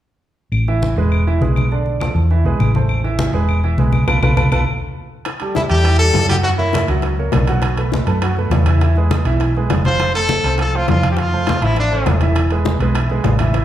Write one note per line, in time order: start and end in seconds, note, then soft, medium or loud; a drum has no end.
0.52 0.93 A1 medium
0.52 high conga soft
0.52 claves medium
0.68 0.92 E3 medium
0.68 0.92 E4 medium
0.68 0.92 E5 medium
0.68 high conga soft
0.83 high conga medium
0.96 1.38 E1 medium
0.96 1.22 G#3 medium
0.96 1.22 G#4 medium
0.96 1.22 B4 medium
0.96 high conga soft
1.12 high conga soft
1.12 claves medium
1.27 1.39 E3 medium
1.27 1.39 E4 medium
1.27 1.39 E5 medium
1.27 high conga soft
1.41 2.09 B1 medium
1.41 1.65 G#3 medium
1.41 1.66 G#4 medium
1.41 1.66 B4 medium
1.41 high conga medium
1.56 high conga medium
1.56 claves medium
1.72 1.96 D3 medium
1.72 1.96 D4 medium
1.72 1.96 D5 medium
1.72 high conga soft
1.86 high conga soft
2.00 2.25 F3 medium
2.00 2.25 F4 medium
2.00 2.25 A4 medium
2.00 high conga medium
2.00 claves medium
2.15 2.42 E2 medium
2.15 high conga soft
2.31 2.42 E3 medium
2.31 2.43 E4 medium
2.31 2.43 E5 medium
2.31 high conga soft
2.44 2.58 B1 medium
2.44 2.69 G#3 medium
2.44 2.70 G#4 medium
2.44 2.70 B4 medium
2.44 high conga soft
2.59 3.28 A1 medium
2.59 high conga medium
2.59 claves medium
2.75 2.99 A3 medium
2.75 2.99 A4 medium
2.75 3.00 C5 medium
2.75 high conga medium
2.89 high conga soft
2.89 claves medium
3.04 3.28 E3 medium
3.04 3.28 E4 medium
3.04 3.29 E5 medium
3.04 high conga soft
3.19 high conga loud
3.33 3.74 E1 medium
3.33 3.58 G#3 medium
3.33 3.58 G#4 medium
3.33 3.58 B4 medium
3.33 high conga soft
3.49 high conga soft
3.49 claves medium
3.63 3.76 E3 medium
3.63 3.76 E4 medium
3.63 3.76 E5 medium
3.63 high conga soft
3.78 4.05 B1 medium
3.78 4.03 G#3 medium
3.78 4.03 G#4 medium
3.78 4.03 B4 medium
3.78 high conga medium
3.92 high conga medium
3.92 claves medium
4.07 4.18 B1 medium
4.07 4.17 F4 medium
4.07 4.17 A4 medium
4.07 4.17 B4 medium
4.07 high conga medium
4.07 claves medium
4.22 4.33 B1 medium
4.22 4.32 F4 medium
4.22 4.32 A4 medium
4.22 4.32 B4 medium
4.22 high conga medium
4.22 claves medium
4.37 4.48 B1 medium
4.37 4.46 F4 medium
4.37 4.46 A4 medium
4.37 4.46 B4 medium
4.37 high conga medium
4.37 claves medium
4.51 4.62 B1 medium
4.51 4.62 F4 medium
4.51 4.61 A4 loud
4.51 4.62 B4 medium
4.51 high conga medium
4.51 claves loud
5.25 high bongo medium
5.25 high conga soft
5.25 high timbale medium
5.40 5.65 G3 medium
5.40 5.66 G4 medium
5.40 5.66 A4 medium
5.40 high bongo soft
5.40 high conga soft
5.40 high timbale medium
5.55 5.62 E4 medium
5.55 high bongo medium
5.55 high conga medium
5.55 low timbale soft
5.70 6.12 E2 medium
5.70 5.83 G3 medium
5.70 5.98 G4 loud
5.70 5.83 G4 medium
5.70 5.83 A4 medium
5.70 high conga soft
5.70 high timbale medium
5.84 5.98 E3 medium
5.84 5.98 E4 medium
5.84 5.98 E5 medium
5.84 high bongo medium
5.84 high conga soft
5.84 high timbale medium
5.99 6.25 G3 medium
5.99 6.25 G4 medium
5.99 6.27 A4 loud
5.99 6.25 A4 medium
5.99 high bongo soft
5.99 high conga soft
6.14 6.83 F#2 medium
6.14 high bongo medium
6.14 low bongo medium
6.14 high conga medium
6.14 high timbale medium
6.14 low timbale medium
6.29 6.42 F#3 medium
6.29 6.42 F#4 medium
6.29 6.36 G4 medium
6.29 6.43 F#5 medium
6.29 high bongo soft
6.29 high conga medium
6.29 high timbale medium
6.43 6.56 F#3 medium
6.43 6.50 F#4 medium
6.43 6.57 F#4 medium
6.43 6.57 F#5 medium
6.43 high bongo medium
6.43 high conga soft
6.43 high timbale medium
6.58 6.83 A#3 medium
6.58 6.86 E4 medium
6.58 6.83 A#4 medium
6.58 6.83 C#5 medium
6.58 high bongo soft
6.58 high conga soft
6.73 high bongo medium
6.73 high conga medium
6.73 high timbale medium
6.73 low timbale medium
6.88 7.30 C#2 medium
6.88 7.13 F#3 medium
6.88 7.13 F#4 medium
6.88 7.14 F#5 medium
6.88 high conga soft
6.88 high timbale medium
7.02 high bongo medium
7.02 high conga soft
7.02 high timbale medium
7.17 7.43 A#3 medium
7.17 7.43 A#4 medium
7.17 7.43 C#5 medium
7.17 high bongo soft
7.17 high conga soft
7.32 8.02 B1 medium
7.32 high bongo medium
7.32 low bongo medium
7.32 high conga medium
7.32 high timbale medium
7.32 low timbale medium
7.47 7.72 F#3 medium
7.47 7.72 F#4 medium
7.47 7.73 F#5 medium
7.47 high bongo soft
7.47 high conga medium
7.47 high timbale medium
7.62 high bongo medium
7.62 high conga soft
7.62 high timbale medium
7.77 8.02 A3 medium
7.77 8.02 A4 medium
7.77 8.02 B4 medium
7.77 high bongo soft
7.77 high conga soft
7.77 high timbale medium
7.92 high bongo medium
7.92 high conga medium
7.92 low timbale medium
8.07 8.48 F#2 medium
8.07 8.20 A3 medium
8.07 8.20 A4 medium
8.07 8.20 B4 medium
8.07 high conga soft
8.07 high timbale medium
8.22 8.35 F#3 medium
8.22 8.35 F#4 medium
8.22 8.35 F#5 medium
8.22 high bongo medium
8.22 high conga soft
8.22 high timbale medium
8.37 8.62 A3 medium
8.37 8.62 A4 medium
8.37 8.62 B4 medium
8.37 high bongo soft
8.37 high conga soft
8.50 9.19 E2 medium
8.50 high bongo medium
8.50 low bongo medium
8.50 high conga medium
8.50 high timbale medium
8.50 low timbale medium
8.66 8.79 E3 medium
8.66 8.79 E4 medium
8.66 8.79 E5 medium
8.66 high bongo soft
8.66 high conga medium
8.66 high timbale medium
8.81 8.94 E3 medium
8.81 8.95 E4 medium
8.81 8.95 E5 medium
8.81 high bongo medium
8.81 high conga soft
8.81 high timbale medium
8.96 9.21 G#3 medium
8.96 9.21 G#4 medium
8.96 9.21 B4 medium
8.96 high bongo soft
8.96 high conga soft
9.11 high bongo medium
9.11 high conga medium
9.11 high timbale medium
9.11 low timbale soft
9.25 9.67 B1 medium
9.25 9.50 E3 medium
9.25 9.50 E4 medium
9.25 9.51 E5 medium
9.25 high conga soft
9.25 high timbale medium
9.40 high bongo medium
9.40 high conga soft
9.40 high timbale medium
9.55 9.81 G#3 medium
9.55 9.81 G#4 medium
9.55 9.81 B4 medium
9.55 high bongo soft
9.55 high conga soft
9.69 10.38 F1 medium
9.69 high bongo medium
9.69 low bongo medium
9.69 high conga medium
9.69 high timbale medium
9.69 low timbale medium
9.85 10.10 F3 medium
9.85 10.10 F4 medium
9.85 10.13 C5 medium
9.85 10.11 F5 medium
9.85 high bongo soft
9.85 high conga medium
9.85 high timbale medium
10.00 high bongo medium
10.00 high conga soft
10.00 high timbale medium
10.14 10.40 A3 medium
10.14 10.56 A4 medium
10.14 10.40 A4 medium
10.14 10.40 C5 medium
10.14 high bongo soft
10.14 high conga soft
10.14 high timbale medium
10.29 high bongo medium
10.29 high conga medium
10.29 low timbale soft
10.44 10.85 C2 medium
10.44 10.56 A3 medium
10.44 10.57 A4 medium
10.44 10.57 C5 medium
10.44 high conga soft
10.44 high timbale medium
10.58 10.71 F3 medium
10.58 10.71 F4 medium
10.58 10.78 A4 medium
10.58 10.72 F5 medium
10.58 high bongo medium
10.58 high conga soft
10.58 high timbale medium
10.73 10.98 A3 medium
10.73 10.89 F4 medium
10.73 10.98 A4 medium
10.73 10.99 C5 medium
10.73 high bongo soft
10.73 high conga soft
10.88 11.57 F2 medium
10.88 11.10 F4 medium
10.88 high bongo medium
10.88 low bongo medium
10.88 high conga medium
10.88 high timbale medium
10.88 low timbale medium
11.02 11.15 F3 medium
11.02 11.16 F4 medium
11.02 11.16 F5 medium
11.02 high bongo soft
11.02 high conga medium
11.02 high timbale medium
11.11 11.20 G4 medium
11.17 11.30 F3 medium
11.17 11.65 F4 medium
11.17 11.30 F4 medium
11.17 11.31 F5 medium
11.17 high bongo medium
11.17 high conga soft
11.17 high timbale medium
11.32 11.57 A3 medium
11.32 11.57 A4 medium
11.32 11.58 C5 medium
11.32 high bongo soft
11.32 high conga soft
11.47 high bongo medium
11.47 high conga medium
11.47 high timbale medium
11.47 low timbale medium
11.62 12.03 A1 medium
11.62 11.86 F3 medium
11.62 11.77 E4 medium
11.62 11.86 F4 medium
11.62 11.87 F5 medium
11.62 high conga soft
11.62 high timbale medium
11.76 12.20 D4 medium
11.76 high bongo medium
11.76 high conga soft
11.76 high timbale medium
11.92 12.16 A3 medium
11.92 12.16 A4 medium
11.92 12.16 C5 medium
11.92 high bongo soft
11.92 high conga soft
12.06 12.75 E1 medium
12.06 high bongo medium
12.06 low bongo medium
12.06 high conga medium
12.06 high timbale medium
12.06 low timbale medium
12.21 12.46 E3 medium
12.21 12.46 E4 medium
12.21 12.46 E5 medium
12.21 high bongo soft
12.21 high conga medium
12.21 high timbale medium
12.36 high bongo medium
12.36 high conga soft
12.36 high timbale medium
12.50 12.76 G#3 medium
12.50 12.76 G#4 medium
12.50 12.76 B4 medium
12.50 high bongo soft
12.50 high conga soft
12.50 high timbale medium
12.65 high bongo medium
12.65 high conga medium
12.65 low timbale medium
12.79 13.21 B1 medium
12.79 12.93 G#3 medium
12.79 12.93 G#4 medium
12.79 12.94 B4 medium
12.79 high conga soft
12.79 high timbale medium
12.95 13.08 E3 medium
12.95 13.08 E4 medium
12.95 13.08 E5 medium
12.95 high bongo medium
12.95 high conga soft
12.95 high timbale medium
13.10 13.35 G#3 medium
13.10 13.35 G#4 medium
13.10 13.35 B4 medium
13.10 high bongo soft
13.10 high conga soft
13.24 13.65 A1 medium
13.24 high bongo medium
13.24 low bongo medium
13.24 high conga medium
13.24 high timbale medium
13.24 low timbale medium
13.39 13.52 E3 medium
13.39 13.52 E4 medium
13.39 13.52 E5 medium
13.39 high bongo soft
13.39 high conga medium
13.39 high timbale medium
13.54 13.65 E3 medium
13.54 13.65 E4 medium
13.54 13.65 E5 medium
13.54 high bongo medium
13.54 high conga soft
13.54 high timbale medium